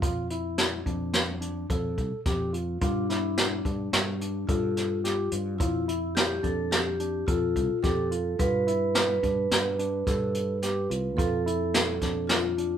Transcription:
0.02 0.82 F2 medium
0.02 0.27 F4 medium
0.02 kick loud
0.02 closed hi-hat medium
0.30 0.80 E4 medium
0.30 closed hi-hat medium
0.58 snare loud
0.58 closed hi-hat medium
0.86 1.66 F2 medium
0.86 1.35 D4 medium
0.86 kick medium
0.86 closed hi-hat medium
1.14 snare medium
1.14 closed hi-hat medium
1.41 1.66 D4 medium
1.41 closed hi-hat medium
1.70 1.95 F2 medium
1.70 2.19 A4 medium
1.70 kick loud
1.70 closed hi-hat medium
1.98 2.11 C2 medium
1.98 kick medium
1.98 closed hi-hat medium
2.26 2.77 F2 medium
2.26 2.51 G4 medium
2.26 kick loud
2.26 snare soft
2.26 closed hi-hat medium
2.53 2.78 F4 medium
2.53 closed hi-hat medium
2.81 3.61 G2 medium
2.81 4.54 D4 medium
2.81 3.06 F4 medium
2.81 kick loud
2.81 closed hi-hat medium
3.10 3.59 E4 medium
3.10 snare soft
3.10 closed hi-hat medium
3.38 snare loud
3.38 closed hi-hat medium
3.65 3.91 G2 medium
3.65 4.15 D4 medium
3.65 kick medium
3.65 closed hi-hat medium
3.93 4.45 G2 medium
3.93 snare loud
3.93 closed hi-hat medium
4.21 4.46 D4 medium
4.21 closed hi-hat medium
4.47 5.28 G2 medium
4.47 5.56 F4 medium
4.47 4.98 A4 medium
4.47 kick loud
4.47 closed hi-hat medium
4.77 snare soft
4.77 closed hi-hat medium
5.04 5.29 G4 medium
5.04 snare soft
5.04 closed hi-hat medium
5.32 5.60 G2 medium
5.32 5.57 F4 medium
5.32 closed hi-hat medium
5.59 6.40 F2 medium
5.59 6.11 E4 medium
5.59 5.85 F4 medium
5.59 kick loud
5.59 closed hi-hat medium
5.88 6.38 E4 medium
5.88 closed hi-hat medium
6.15 6.44 G4 medium
6.15 snare loud
6.15 closed hi-hat medium
6.43 7.24 F2 medium
6.43 6.93 D4 medium
6.43 6.72 A4 medium
6.43 kick medium
6.43 closed hi-hat medium
6.71 7.23 G4 medium
6.71 snare loud
6.71 closed hi-hat medium
7.00 7.25 D4 medium
7.00 closed hi-hat medium
7.27 7.54 F2 medium
7.27 7.85 F4 medium
7.27 7.77 A4 medium
7.27 kick loud
7.27 closed hi-hat medium
7.56 7.69 C2 medium
7.56 kick medium
7.56 closed hi-hat medium
7.83 8.35 F2 medium
7.83 8.08 G4 medium
7.83 8.41 A4 medium
7.83 kick loud
7.83 snare soft
7.83 closed hi-hat medium
8.11 8.36 F4 medium
8.11 closed hi-hat medium
8.39 9.19 G2 medium
8.39 8.64 F4 medium
8.39 8.94 B4 loud
8.39 kick loud
8.39 closed hi-hat medium
8.67 9.17 E4 medium
8.67 closed hi-hat medium
8.95 11.25 B4 medium
8.95 snare loud
8.95 closed hi-hat medium
9.23 9.49 G2 medium
9.23 9.73 D4 medium
9.23 kick medium
9.23 closed hi-hat medium
9.51 10.03 G2 medium
9.51 snare loud
9.51 closed hi-hat medium
9.79 10.04 D4 medium
9.79 closed hi-hat medium
10.07 10.86 G2 medium
10.07 10.57 A4 medium
10.07 kick loud
10.07 snare soft
10.07 closed hi-hat medium
10.35 closed hi-hat medium
10.62 10.88 G4 medium
10.62 snare soft
10.62 closed hi-hat medium
10.90 11.19 C2 medium
10.90 11.15 F4 medium
10.90 closed hi-hat medium
11.17 11.98 F2 medium
11.17 11.43 F4 medium
11.17 12.32 A4 loud
11.17 kick loud
11.17 closed hi-hat medium
11.46 11.96 E4 medium
11.46 closed hi-hat medium
11.74 snare loud
11.74 closed hi-hat medium
12.01 12.78 F2 medium
12.01 12.52 D4 medium
12.01 kick medium
12.01 snare soft
12.01 closed hi-hat medium
12.27 12.78 F4 medium
12.27 snare loud
12.27 closed hi-hat medium
12.58 12.78 D4 medium
12.58 closed hi-hat medium

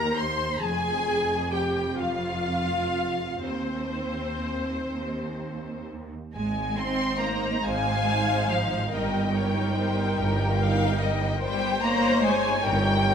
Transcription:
0.00 0.63 D#2 medium
0.00 0.18 A#4 medium
0.00 0.18 A#5 medium
0.00 0.19 A#5 loud
0.17 0.62 C5 medium
0.17 0.63 C6 medium
0.17 0.63 C6 loud
0.61 3.39 F1 medium
0.61 3.38 F2 medium
0.61 1.52 G#4 loud
0.61 1.51 G#5 loud
0.61 1.54 G#5 loud
1.53 2.00 G4 medium
1.53 1.99 G5 medium
1.53 2.00 G5 medium
1.98 3.43 F4 medium
1.98 3.42 F5 medium
1.98 3.40 F5 loud
3.41 4.87 D#2 medium
3.41 5.84 C4 medium
3.41 5.87 C5 medium
3.41 5.84 C5 medium
4.90 6.11 D#2 medium
4.90 6.12 D#2 medium
6.34 7.49 G#1 medium
6.34 6.75 G#3 medium
6.34 6.75 G#5 medium
6.78 7.21 C4 loud
6.78 8.04 D#4 medium
6.78 8.04 C5 medium
6.78 7.21 C6 loud
7.21 7.64 A#3 medium
7.21 7.64 A#5 loud
7.63 8.76 G#1 loud
7.63 8.47 G#3 medium
7.63 8.87 F5 loud
7.63 8.50 G#5 loud
8.07 8.90 D#4 medium
8.07 8.90 C5 medium
8.49 8.91 F3 loud
8.49 8.92 F5 loud
8.91 10.02 G1 medium
8.91 11.36 G3 medium
8.91 9.32 D#4 medium
8.91 9.32 A#4 medium
8.91 9.34 D#5 medium
8.91 11.41 G5 medium
9.33 10.56 D#4 medium
9.33 10.56 A#4 medium
9.33 9.75 C#5 medium
9.74 10.16 C5 medium
10.16 11.26 G1 loud
10.16 10.58 A#4 medium
10.58 11.39 D#4 medium
10.58 11.39 A#4 medium
10.58 10.99 F5 loud
11.01 11.41 D#5 medium
11.40 12.50 G1 medium
11.40 11.81 G3 loud
11.40 12.62 C5 loud
11.40 11.82 G5 loud
11.82 12.22 A#3 loud
11.82 13.04 D#4 medium
11.82 13.04 C#5 medium
11.82 12.23 A#5 loud
12.22 12.64 G#3 loud
12.22 12.65 G#5 loud
12.64 13.14 G1 loud
12.64 13.14 G3 medium
12.64 13.14 A#4 medium
12.64 13.14 G5 loud
13.06 13.14 D#4 medium
13.06 13.14 C#5 medium

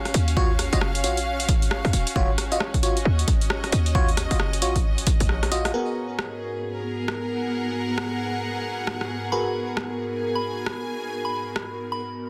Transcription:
0.00 6.79 C#4 medium
0.00 6.43 F#4 medium
0.00 3.05 F5 medium
0.05 cross-stick medium
0.05 closed hi-hat soft
0.14 0.69 D#2 medium
0.14 open hi-hat loud
0.28 open hi-hat medium
0.37 0.51 F4 loud
0.37 0.51 F#4 medium
0.37 0.51 C#5 loud
0.37 kick loud
0.59 cross-stick medium
0.59 open hi-hat loud
0.73 1.05 F#1 loud
0.73 0.79 F4 loud
0.73 0.79 F#4 medium
0.73 0.79 D#5 loud
0.73 closed hi-hat medium
0.81 cross-stick loud
0.95 closed hi-hat medium
1.04 1.50 A#1 medium
1.04 1.19 F4 medium
1.04 1.19 F#4 medium
1.04 1.19 C#5 medium
1.04 open hi-hat loud
1.17 closed hi-hat medium
1.40 closed hi-hat medium
1.49 1.81 D#1 medium
1.49 kick loud
1.49 open hi-hat loud
1.62 closed hi-hat medium
1.71 cross-stick loud
1.85 1.92 D#2 loud
1.85 cross-stick medium
1.85 closed hi-hat soft
1.93 2.05 D#1 medium
1.93 open hi-hat loud
2.07 closed hi-hat medium
2.16 2.27 D#1 loud
2.16 2.30 F4 loud
2.16 2.30 F#4 loud
2.16 2.30 C#5 loud
2.16 kick loud
2.38 cross-stick medium
2.38 open hi-hat loud
2.52 2.58 F4 medium
2.52 2.58 F#4 medium
2.52 2.58 D#5 loud
2.52 closed hi-hat medium
2.60 cross-stick loud
2.74 kick medium
2.74 closed hi-hat medium
2.83 2.98 F4 medium
2.83 2.98 F#4 medium
2.83 2.98 C#5 medium
2.83 open hi-hat loud
2.93 6.51 D#5 medium
2.93 closed hi-hat medium
3.05 3.25 D#2 medium
3.19 closed hi-hat medium
3.28 3.39 G#1 medium
3.28 kick loud
3.28 open hi-hat loud
3.41 closed hi-hat medium
3.50 cross-stick loud
3.64 cross-stick medium
3.64 closed hi-hat soft
3.72 4.27 D#2 medium
3.72 open hi-hat loud
3.86 open hi-hat medium
3.95 4.10 F4 loud
3.95 4.10 F#4 medium
3.95 4.10 C#5 loud
3.95 kick loud
4.09 closed hi-hat soft
4.17 cross-stick medium
4.17 open hi-hat loud
4.31 4.64 F#1 loud
4.31 4.37 F4 loud
4.31 4.37 F#4 medium
4.31 4.37 D#5 loud
4.31 closed hi-hat medium
4.40 cross-stick loud
4.53 closed hi-hat medium
4.62 5.04 A#1 medium
4.62 4.77 F4 medium
4.62 4.77 F#4 medium
4.62 4.77 C#5 medium
4.62 open hi-hat loud
4.76 kick medium
4.76 closed hi-hat medium
4.98 closed hi-hat medium
5.07 kick loud
5.07 open hi-hat loud
5.20 5.72 A#1 loud
5.20 closed hi-hat medium
5.29 cross-stick medium
5.43 cross-stick medium
5.43 closed hi-hat soft
5.52 5.72 F4 loud
5.52 5.72 F#4 medium
5.52 5.72 D#5 loud
5.52 open hi-hat loud
5.65 cross-stick medium
5.65 closed hi-hat medium
5.74 12.30 G#2 medium
5.74 12.30 B3 medium
5.74 9.30 B3 medium
5.74 12.01 B3 medium
5.74 12.30 D#4 medium
5.74 12.30 F#4 medium
5.74 9.30 F#4 medium
5.74 9.30 G#4 medium
5.74 12.30 A#4 medium
5.74 9.30 A#4 medium
6.17 12.01 G#4 medium
6.17 cross-stick loud
6.71 9.98 A#4 medium
7.08 cross-stick loud
7.30 10.25 F#5 medium
7.98 cross-stick loud
8.87 cross-stick loud
9.01 cross-stick medium
9.32 12.01 B3 medium
9.32 12.01 F#4 medium
9.32 12.01 G#4 medium
9.32 12.01 A#4 medium
9.32 9.54 B5 loud
9.77 cross-stick loud
10.13 12.01 G#5 medium
10.35 10.63 B5 medium
10.66 cross-stick loud
11.25 11.47 B5 medium
11.56 cross-stick loud
11.92 12.01 B5 medium

